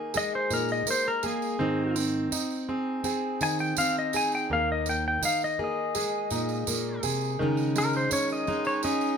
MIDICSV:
0, 0, Header, 1, 6, 480
1, 0, Start_track
1, 0, Tempo, 723764
1, 1058, Time_signature, 4, 2, 24, 8
1, 6084, End_track
2, 0, Start_track
2, 0, Title_t, "Pedal steel guitar"
2, 0, Program_c, 0, 26
2, 115, Note_on_c, 0, 75, 100
2, 224, Note_off_c, 0, 75, 0
2, 234, Note_on_c, 0, 72, 85
2, 343, Note_off_c, 0, 72, 0
2, 354, Note_on_c, 0, 70, 67
2, 463, Note_off_c, 0, 70, 0
2, 477, Note_on_c, 0, 75, 79
2, 585, Note_off_c, 0, 75, 0
2, 600, Note_on_c, 0, 72, 86
2, 706, Note_off_c, 0, 72, 0
2, 715, Note_on_c, 0, 70, 71
2, 823, Note_off_c, 0, 70, 0
2, 837, Note_on_c, 0, 68, 82
2, 1294, Note_off_c, 0, 68, 0
2, 2274, Note_on_c, 0, 80, 91
2, 2384, Note_off_c, 0, 80, 0
2, 2390, Note_on_c, 0, 79, 76
2, 2501, Note_off_c, 0, 79, 0
2, 2509, Note_on_c, 0, 77, 85
2, 2621, Note_off_c, 0, 77, 0
2, 2643, Note_on_c, 0, 75, 72
2, 2748, Note_off_c, 0, 75, 0
2, 2762, Note_on_c, 0, 80, 92
2, 2867, Note_off_c, 0, 80, 0
2, 2884, Note_on_c, 0, 79, 81
2, 2989, Note_off_c, 0, 79, 0
2, 3003, Note_on_c, 0, 77, 86
2, 3108, Note_off_c, 0, 77, 0
2, 3129, Note_on_c, 0, 75, 77
2, 3231, Note_off_c, 0, 75, 0
2, 3246, Note_on_c, 0, 79, 78
2, 3350, Note_off_c, 0, 79, 0
2, 3367, Note_on_c, 0, 79, 76
2, 3470, Note_off_c, 0, 79, 0
2, 3483, Note_on_c, 0, 77, 81
2, 3588, Note_off_c, 0, 77, 0
2, 3609, Note_on_c, 0, 75, 74
2, 3711, Note_off_c, 0, 75, 0
2, 3739, Note_on_c, 0, 75, 89
2, 4653, Note_off_c, 0, 75, 0
2, 5162, Note_on_c, 0, 70, 92
2, 5267, Note_off_c, 0, 70, 0
2, 5283, Note_on_c, 0, 72, 78
2, 5388, Note_off_c, 0, 72, 0
2, 5391, Note_on_c, 0, 73, 82
2, 5502, Note_off_c, 0, 73, 0
2, 5521, Note_on_c, 0, 75, 84
2, 5744, Note_off_c, 0, 75, 0
2, 5749, Note_on_c, 0, 73, 83
2, 5861, Note_off_c, 0, 73, 0
2, 5866, Note_on_c, 0, 75, 81
2, 6084, Note_off_c, 0, 75, 0
2, 6084, End_track
3, 0, Start_track
3, 0, Title_t, "Upright piano"
3, 0, Program_c, 1, 0
3, 0, Note_on_c, 1, 58, 61
3, 0, Note_on_c, 1, 63, 55
3, 93, Note_on_c, 1, 68, 66
3, 326, Note_off_c, 1, 63, 0
3, 336, Note_on_c, 1, 63, 53
3, 565, Note_off_c, 1, 58, 0
3, 575, Note_on_c, 1, 58, 61
3, 807, Note_off_c, 1, 68, 0
3, 817, Note_on_c, 1, 68, 65
3, 1055, Note_on_c, 1, 60, 83
3, 1057, Note_off_c, 1, 58, 0
3, 1105, Note_off_c, 1, 63, 0
3, 1106, Note_off_c, 1, 68, 0
3, 1288, Note_off_c, 1, 60, 0
3, 1298, Note_on_c, 1, 60, 61
3, 1538, Note_on_c, 1, 63, 61
3, 1771, Note_off_c, 1, 60, 0
3, 1781, Note_on_c, 1, 60, 60
3, 2021, Note_on_c, 1, 68, 67
3, 2255, Note_off_c, 1, 63, 0
3, 2265, Note_on_c, 1, 63, 58
3, 2495, Note_off_c, 1, 60, 0
3, 2505, Note_on_c, 1, 60, 60
3, 2737, Note_off_c, 1, 68, 0
3, 2747, Note_on_c, 1, 68, 65
3, 2982, Note_off_c, 1, 60, 0
3, 2990, Note_on_c, 1, 58, 81
3, 3030, Note_off_c, 1, 63, 0
3, 3031, Note_off_c, 1, 68, 0
3, 3218, Note_off_c, 1, 58, 0
3, 3228, Note_on_c, 1, 58, 60
3, 3468, Note_on_c, 1, 63, 58
3, 3695, Note_off_c, 1, 58, 0
3, 3705, Note_on_c, 1, 58, 62
3, 3947, Note_on_c, 1, 68, 72
3, 4178, Note_off_c, 1, 63, 0
3, 4188, Note_on_c, 1, 63, 56
3, 4416, Note_off_c, 1, 58, 0
3, 4426, Note_on_c, 1, 58, 63
3, 4654, Note_off_c, 1, 68, 0
3, 4663, Note_on_c, 1, 68, 71
3, 4902, Note_on_c, 1, 51, 88
3, 4950, Note_off_c, 1, 68, 0
3, 4951, Note_off_c, 1, 58, 0
3, 4952, Note_off_c, 1, 63, 0
3, 5146, Note_on_c, 1, 56, 63
3, 5381, Note_on_c, 1, 61, 63
3, 5613, Note_off_c, 1, 56, 0
3, 5623, Note_on_c, 1, 56, 60
3, 5862, Note_on_c, 1, 68, 67
3, 6084, Note_off_c, 1, 51, 0
3, 6084, Note_off_c, 1, 56, 0
3, 6084, Note_off_c, 1, 61, 0
3, 6084, Note_off_c, 1, 68, 0
3, 6084, End_track
4, 0, Start_track
4, 0, Title_t, "Steel-string acoustic guitar"
4, 0, Program_c, 2, 25
4, 0, Note_on_c, 2, 63, 58
4, 0, Note_on_c, 2, 68, 64
4, 102, Note_on_c, 2, 56, 56
4, 335, Note_on_c, 2, 46, 63
4, 565, Note_off_c, 2, 46, 0
4, 819, Note_off_c, 2, 63, 0
4, 821, Note_on_c, 2, 58, 57
4, 1055, Note_on_c, 2, 44, 73
4, 1060, Note_off_c, 2, 58, 0
4, 1060, Note_on_c, 2, 51, 65
4, 1062, Note_off_c, 2, 56, 0
4, 1065, Note_on_c, 2, 60, 63
4, 1068, Note_on_c, 2, 63, 61
4, 1530, Note_off_c, 2, 51, 0
4, 1531, Note_off_c, 2, 44, 0
4, 1781, Note_off_c, 2, 68, 0
4, 1784, Note_on_c, 2, 68, 71
4, 2008, Note_off_c, 2, 60, 0
4, 2016, Note_on_c, 2, 60, 63
4, 2260, Note_on_c, 2, 51, 63
4, 2498, Note_off_c, 2, 51, 0
4, 2745, Note_off_c, 2, 63, 0
4, 2748, Note_on_c, 2, 63, 56
4, 2949, Note_off_c, 2, 60, 0
4, 2984, Note_on_c, 2, 39, 79
4, 3452, Note_off_c, 2, 39, 0
4, 3706, Note_off_c, 2, 68, 0
4, 3709, Note_on_c, 2, 68, 66
4, 3952, Note_on_c, 2, 56, 63
4, 4186, Note_on_c, 2, 46, 65
4, 4419, Note_off_c, 2, 46, 0
4, 4427, Note_on_c, 2, 46, 61
4, 4663, Note_off_c, 2, 46, 0
4, 4666, Note_on_c, 2, 48, 67
4, 4876, Note_off_c, 2, 68, 0
4, 4903, Note_off_c, 2, 48, 0
4, 4906, Note_off_c, 2, 56, 0
4, 4910, Note_on_c, 2, 49, 73
4, 4915, Note_on_c, 2, 56, 63
4, 4918, Note_off_c, 2, 63, 0
4, 4921, Note_on_c, 2, 61, 67
4, 4925, Note_on_c, 2, 63, 69
4, 5376, Note_off_c, 2, 49, 0
4, 5618, Note_off_c, 2, 63, 0
4, 5626, Note_on_c, 2, 63, 69
4, 5860, Note_off_c, 2, 61, 0
4, 5868, Note_on_c, 2, 61, 66
4, 6084, Note_off_c, 2, 56, 0
4, 6084, Note_off_c, 2, 61, 0
4, 6084, Note_off_c, 2, 63, 0
4, 6084, End_track
5, 0, Start_track
5, 0, Title_t, "Muted steel-string acoustic guitar strokes"
5, 567, Note_on_c, 9, 29, 67
5, 634, Note_off_c, 9, 29, 0
5, 1538, Note_on_c, 9, 29, 69
5, 1604, Note_off_c, 9, 29, 0
5, 2503, Note_on_c, 9, 29, 67
5, 2569, Note_off_c, 9, 29, 0
5, 3460, Note_on_c, 9, 29, 70
5, 3526, Note_off_c, 9, 29, 0
5, 5384, Note_on_c, 9, 29, 70
5, 5450, Note_off_c, 9, 29, 0
5, 6084, End_track
6, 0, Start_track
6, 0, Title_t, "Drums"
6, 92, Note_on_c, 9, 54, 73
6, 159, Note_off_c, 9, 54, 0
6, 334, Note_on_c, 9, 54, 64
6, 401, Note_off_c, 9, 54, 0
6, 455, Note_on_c, 9, 54, 28
6, 521, Note_off_c, 9, 54, 0
6, 575, Note_on_c, 9, 54, 90
6, 641, Note_off_c, 9, 54, 0
6, 814, Note_on_c, 9, 54, 65
6, 881, Note_off_c, 9, 54, 0
6, 942, Note_on_c, 9, 54, 25
6, 1008, Note_off_c, 9, 54, 0
6, 1298, Note_on_c, 9, 54, 68
6, 1365, Note_off_c, 9, 54, 0
6, 1539, Note_on_c, 9, 54, 92
6, 1605, Note_off_c, 9, 54, 0
6, 1660, Note_on_c, 9, 54, 26
6, 1727, Note_off_c, 9, 54, 0
6, 2016, Note_on_c, 9, 54, 69
6, 2083, Note_off_c, 9, 54, 0
6, 2260, Note_on_c, 9, 54, 68
6, 2326, Note_off_c, 9, 54, 0
6, 2381, Note_on_c, 9, 54, 26
6, 2447, Note_off_c, 9, 54, 0
6, 2497, Note_on_c, 9, 54, 90
6, 2563, Note_off_c, 9, 54, 0
6, 2739, Note_on_c, 9, 54, 65
6, 2806, Note_off_c, 9, 54, 0
6, 2864, Note_on_c, 9, 54, 26
6, 2930, Note_off_c, 9, 54, 0
6, 3222, Note_on_c, 9, 54, 67
6, 3289, Note_off_c, 9, 54, 0
6, 3466, Note_on_c, 9, 54, 91
6, 3532, Note_off_c, 9, 54, 0
6, 3585, Note_on_c, 9, 54, 25
6, 3652, Note_off_c, 9, 54, 0
6, 3944, Note_on_c, 9, 54, 77
6, 4010, Note_off_c, 9, 54, 0
6, 4181, Note_on_c, 9, 54, 65
6, 4247, Note_off_c, 9, 54, 0
6, 4303, Note_on_c, 9, 54, 29
6, 4369, Note_off_c, 9, 54, 0
6, 4424, Note_on_c, 9, 54, 90
6, 4490, Note_off_c, 9, 54, 0
6, 4661, Note_on_c, 9, 54, 71
6, 4728, Note_off_c, 9, 54, 0
6, 4782, Note_on_c, 9, 54, 26
6, 4849, Note_off_c, 9, 54, 0
6, 5021, Note_on_c, 9, 54, 24
6, 5088, Note_off_c, 9, 54, 0
6, 5144, Note_on_c, 9, 54, 71
6, 5210, Note_off_c, 9, 54, 0
6, 5259, Note_on_c, 9, 54, 25
6, 5325, Note_off_c, 9, 54, 0
6, 5378, Note_on_c, 9, 54, 88
6, 5444, Note_off_c, 9, 54, 0
6, 5500, Note_on_c, 9, 54, 25
6, 5566, Note_off_c, 9, 54, 0
6, 5619, Note_on_c, 9, 54, 26
6, 5685, Note_off_c, 9, 54, 0
6, 5735, Note_on_c, 9, 54, 25
6, 5801, Note_off_c, 9, 54, 0
6, 5854, Note_on_c, 9, 54, 68
6, 5920, Note_off_c, 9, 54, 0
6, 5975, Note_on_c, 9, 54, 26
6, 6042, Note_off_c, 9, 54, 0
6, 6084, End_track
0, 0, End_of_file